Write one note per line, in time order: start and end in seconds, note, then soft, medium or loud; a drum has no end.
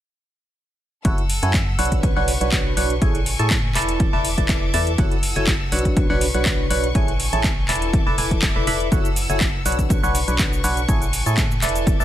1.05 1.40 F#1 loud
1.05 1.22 E4 medium
1.05 2.43 E4 medium
1.05 1.22 F#4 medium
1.05 1.22 A4 medium
1.05 2.02 A4 medium
1.05 1.22 C#5 medium
1.05 2.02 F#5 medium
1.05 1.22 F#5 medium
1.05 2.02 E6 medium
1.05 kick loud
1.05 closed hi-hat medium
1.18 closed hi-hat soft
1.30 open hi-hat loud
1.42 1.76 F#2 medium
1.42 1.59 E4 medium
1.42 1.59 F#4 medium
1.42 2.43 A4 medium
1.42 1.59 A4 medium
1.42 1.59 C#5 medium
1.42 1.59 G#5 medium
1.42 closed hi-hat medium
1.47 3.42 F#5 medium
1.47 4.00 C#6 medium
1.54 kick loud
1.54 clap loud
1.54 closed hi-hat medium
1.79 2.14 B1 loud
1.79 2.13 D4 medium
1.79 2.13 F#4 medium
1.79 2.13 B4 medium
1.79 2.13 C#5 medium
1.79 2.13 F#5 loud
1.79 open hi-hat loud
1.85 closed hi-hat medium
1.92 kick medium
1.92 closed hi-hat medium
2.03 3.01 D4 medium
2.03 3.02 D4 medium
2.03 3.01 B4 medium
2.03 3.01 C#6 medium
2.03 kick loud
2.03 closed hi-hat medium
2.16 2.38 B1 medium
2.16 2.33 D4 medium
2.16 2.33 F#4 medium
2.16 2.33 B4 medium
2.16 2.33 C#5 medium
2.16 2.33 F#5 loud
2.28 open hi-hat loud
2.41 2.75 B1 loud
2.41 2.74 D4 medium
2.41 2.74 F#4 medium
2.41 2.74 B4 medium
2.41 2.74 C#5 medium
2.41 2.74 F#5 medium
2.41 closed hi-hat medium
2.48 3.42 B4 medium
2.48 clap loud
2.52 kick loud
2.52 closed hi-hat medium
2.77 2.99 B1 loud
2.77 2.95 D4 medium
2.77 2.95 F#4 medium
2.77 2.95 B4 medium
2.77 2.95 C#5 medium
2.77 2.95 F#5 loud
2.77 open hi-hat loud
2.90 closed hi-hat medium
3.02 3.37 A1 loud
3.02 3.19 E4 medium
3.02 6.37 E4 medium
3.02 3.19 G#4 medium
3.02 3.19 A4 medium
3.02 5.94 A4 medium
3.02 3.19 C#5 medium
3.02 3.19 G#5 medium
3.02 3.99 G#5 medium
3.02 3.99 C#6 medium
3.02 kick loud
3.02 closed hi-hat medium
3.15 closed hi-hat soft
3.26 4.40 A4 medium
3.26 open hi-hat loud
3.39 3.73 A2 medium
3.39 3.56 E4 medium
3.39 3.56 G#4 medium
3.39 3.56 A4 medium
3.39 3.56 C#5 medium
3.39 3.56 A5 medium
3.39 closed hi-hat medium
3.50 kick loud
3.50 clap loud
3.50 closed hi-hat medium
3.75 4.11 E1 medium
3.75 4.10 E4 medium
3.75 4.10 A4 medium
3.75 4.10 B4 medium
3.75 4.10 D5 medium
3.75 4.10 A5 loud
3.75 clap medium
3.75 open hi-hat loud
3.82 closed hi-hat medium
3.89 closed hi-hat medium
4.00 4.97 E5 medium
4.00 4.97 D6 medium
4.00 kick loud
4.00 closed hi-hat medium
4.13 4.35 E1 medium
4.13 4.30 E4 medium
4.13 4.30 A4 medium
4.13 4.30 B4 medium
4.13 4.30 D5 medium
4.13 4.30 A5 loud
4.25 open hi-hat loud
4.38 4.71 E1 loud
4.38 4.71 E4 medium
4.38 4.71 A4 medium
4.38 4.71 B4 medium
4.38 4.71 D5 medium
4.38 4.71 A5 medium
4.38 kick medium
4.38 closed hi-hat medium
4.44 5.38 B4 medium
4.44 5.38 A5 medium
4.49 kick loud
4.49 clap loud
4.49 closed hi-hat medium
4.74 4.96 E2 medium
4.74 4.91 E4 medium
4.74 4.91 A4 medium
4.74 4.91 B4 medium
4.74 4.91 D5 medium
4.74 4.91 A5 loud
4.74 open hi-hat loud
4.87 closed hi-hat medium
4.98 5.33 F#1 loud
4.98 5.16 E4 medium
4.98 5.16 F#4 medium
4.98 5.16 A4 medium
4.98 5.16 C#5 medium
4.98 5.96 F#5 medium
4.98 5.16 F#5 medium
4.98 5.96 E6 medium
4.98 kick loud
4.98 closed hi-hat medium
5.11 closed hi-hat soft
5.23 6.37 A4 medium
5.23 open hi-hat loud
5.36 5.70 F#1 medium
5.36 5.53 E4 medium
5.36 5.53 F#4 medium
5.36 5.53 A4 medium
5.36 5.53 C#5 medium
5.36 5.53 G#5 medium
5.36 closed hi-hat medium
5.43 7.35 F#5 medium
5.43 7.93 C#6 medium
5.47 kick loud
5.47 clap loud
5.47 closed hi-hat medium
5.72 6.07 B1 medium
5.72 6.07 D4 medium
5.72 6.07 F#4 medium
5.72 6.07 B4 medium
5.72 6.07 C#5 medium
5.72 6.07 F#5 loud
5.72 open hi-hat loud
5.79 closed hi-hat medium
5.85 kick medium
5.85 closed hi-hat medium
5.97 6.94 D4 medium
5.97 6.95 D4 medium
5.97 6.94 B4 medium
5.97 7.91 C#6 medium
5.97 kick loud
5.97 closed hi-hat medium
6.10 6.32 B1 loud
6.10 6.26 D4 loud
6.10 6.26 F#4 medium
6.10 6.26 B4 medium
6.10 6.26 C#5 medium
6.10 6.26 F#5 loud
6.21 open hi-hat loud
6.34 6.68 B1 medium
6.34 6.68 D4 medium
6.34 6.68 F#4 medium
6.34 6.68 B4 medium
6.34 6.68 C#5 medium
6.34 6.68 F#5 medium
6.34 closed hi-hat soft
6.41 7.35 B4 medium
6.45 kick loud
6.45 clap loud
6.45 closed hi-hat medium
6.70 6.93 B1 loud
6.70 6.88 D4 medium
6.70 6.88 F#4 medium
6.70 6.88 B4 medium
6.70 6.88 C#5 medium
6.70 6.88 F#5 loud
6.70 open hi-hat loud
6.84 closed hi-hat soft
6.95 7.30 A1 loud
6.95 10.30 E4 medium
6.95 7.13 E4 medium
6.95 7.13 G#4 medium
6.95 9.87 A4 medium
6.95 7.13 A4 medium
6.95 7.13 C#5 medium
6.95 7.92 G#5 medium
6.95 7.13 G#5 medium
6.95 kick loud
6.95 closed hi-hat medium
7.08 closed hi-hat soft
7.20 open hi-hat loud
7.29 7.67 A1 medium
7.29 7.49 E4 medium
7.29 7.49 G#4 medium
7.29 8.33 A4 medium
7.29 7.49 A4 medium
7.29 7.49 C#5 medium
7.29 7.49 A5 medium
7.29 closed hi-hat soft
7.44 kick loud
7.44 clap loud
7.44 closed hi-hat medium
7.68 8.04 E1 medium
7.68 8.03 E4 medium
7.68 8.03 A4 medium
7.68 8.03 B4 medium
7.68 8.03 D5 medium
7.68 8.03 A5 loud
7.68 clap medium
7.68 open hi-hat loud
7.75 closed hi-hat medium
7.82 closed hi-hat soft
7.93 8.91 E5 medium
7.93 8.91 D6 medium
7.93 kick loud
7.93 closed hi-hat medium
8.07 8.16 E1 medium
8.07 8.16 E4 medium
8.07 8.16 A4 medium
8.07 8.16 B4 medium
8.07 8.16 D5 medium
8.07 8.16 A5 loud
8.17 8.53 E1 loud
8.17 8.45 E4 medium
8.17 8.45 A4 medium
8.17 9.32 B4 medium
8.17 8.45 B4 medium
8.17 8.45 D5 medium
8.17 8.45 G#5 medium
8.17 open hi-hat loud
8.31 kick medium
8.31 closed hi-hat soft
8.38 9.32 A5 medium
8.42 kick loud
8.42 clap loud
8.42 closed hi-hat medium
8.56 8.65 E1 loud
8.56 8.66 E4 medium
8.56 8.65 A4 medium
8.56 8.65 B4 medium
8.56 8.65 D5 medium
8.56 8.66 B5 medium
8.67 8.89 E1 medium
8.67 8.88 E4 loud
8.67 8.88 A4 medium
8.67 8.88 B4 medium
8.67 8.88 D5 medium
8.67 8.88 B5 loud
8.67 open hi-hat loud
8.80 closed hi-hat soft
8.92 9.27 F#1 loud
8.92 9.09 E4 medium
8.92 9.09 F#4 medium
8.92 9.09 A4 medium
8.92 9.09 C#5 medium
8.92 9.89 F#5 medium
8.92 9.09 F#5 medium
8.92 9.89 E6 medium
8.92 kick loud
8.92 closed hi-hat medium
8.92 cabasa soft
9.05 closed hi-hat soft
9.05 cabasa soft
9.16 open hi-hat loud
9.16 cabasa medium
9.26 9.63 F#1 medium
9.26 9.46 E4 medium
9.26 9.46 F#4 medium
9.26 9.46 A4 medium
9.26 9.46 C#5 medium
9.26 9.46 G#5 medium
9.26 11.87 C#6 medium
9.26 closed hi-hat medium
9.26 cabasa soft
9.36 10.30 A4 medium
9.36 11.29 F#5 medium
9.40 kick loud
9.40 clap loud
9.40 closed hi-hat medium
9.40 cabasa soft
9.66 10.01 B1 loud
9.66 10.00 D4 medium
9.66 10.00 F#4 medium
9.66 10.00 B4 medium
9.66 10.00 C#5 medium
9.66 10.00 F#5 loud
9.66 open hi-hat loud
9.66 cabasa medium
9.72 closed hi-hat medium
9.79 kick medium
9.79 closed hi-hat medium
9.79 cabasa soft
9.90 10.88 D4 medium
9.90 10.88 B4 medium
9.90 11.85 C#6 medium
9.90 kick loud
9.90 closed hi-hat medium
9.90 cabasa soft
10.03 10.25 B1 medium
10.03 10.20 D4 medium
10.03 10.20 F#4 medium
10.03 10.20 B4 medium
10.03 11.29 B4 medium
10.03 10.20 C#5 medium
10.03 10.20 F#5 loud
10.03 cabasa soft
10.15 open hi-hat loud
10.15 cabasa medium
10.28 10.62 B1 loud
10.28 10.61 D4 medium
10.28 10.61 F#4 medium
10.28 10.61 B4 medium
10.28 10.61 C#5 medium
10.28 10.61 F#5 medium
10.28 closed hi-hat soft
10.28 cabasa soft
10.39 kick loud
10.39 clap loud
10.39 closed hi-hat medium
10.39 cabasa soft
10.53 cabasa soft
10.64 10.86 B1 medium
10.64 10.81 D4 medium
10.64 10.81 F#4 medium
10.64 10.81 B4 medium
10.64 10.81 C#5 medium
10.64 10.81 F#5 loud
10.64 open hi-hat loud
10.64 cabasa medium
10.77 closed hi-hat soft
10.77 cabasa soft
10.88 11.24 A1 loud
10.88 11.06 E4 medium
10.88 12.05 E4 medium
10.88 11.06 G#4 medium
10.88 12.05 A4 medium
10.88 11.06 A4 medium
10.88 11.06 C#5 medium
10.88 11.86 G#5 medium
10.88 11.06 G#5 medium
10.88 kick loud
10.88 closed hi-hat medium
10.88 cabasa soft
10.96 12.05 A4 medium
11.02 closed hi-hat soft
11.02 cabasa soft
11.13 open hi-hat loud
11.13 cabasa medium
11.26 11.60 A2 medium
11.26 11.43 E4 medium
11.26 11.43 G#4 medium
11.26 11.43 A4 medium
11.26 11.43 C#5 medium
11.26 11.43 A5 medium
11.26 closed hi-hat medium
11.26 cabasa soft
11.37 kick loud
11.37 clap loud
11.37 closed hi-hat medium
11.37 cabasa soft
11.51 cabasa soft
11.62 11.97 E1 medium
11.62 11.97 E4 medium
11.62 11.97 A4 medium
11.62 11.97 B4 medium
11.62 11.97 D5 medium
11.62 11.97 A5 loud
11.62 clap medium
11.62 open hi-hat loud
11.62 cabasa medium
11.69 closed hi-hat medium
11.75 closed hi-hat medium
11.75 cabasa soft
11.87 12.05 E5 medium
11.87 12.05 D6 medium
11.87 kick loud
11.87 closed hi-hat medium
11.87 cabasa soft
12.00 12.05 E1 medium
12.00 12.05 E4 medium
12.00 12.05 A4 medium
12.00 12.05 B4 medium
12.00 12.05 D5 medium
12.00 12.05 A5 loud
12.00 cabasa soft